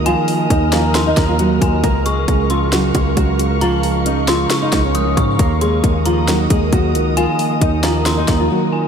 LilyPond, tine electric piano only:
\new Staff \with { instrumentName = "Tine electric piano" } { \clef bass \time 4/4 \key des \major \tempo 4 = 135 <ees bes>8 bes8 ees8 ees8 ees8 bes8 ges8 ees8 | des8 aes8 des8 des8 des8 aes4 des8 | des8 aes8 des8 des8 des8 aes8 f8 des8 | ees8 bes8 ees8 ees8 ees8 bes4 ees8 |
ees8 bes8 ees8 ees8 ees8 bes8 ges8 ees8 | }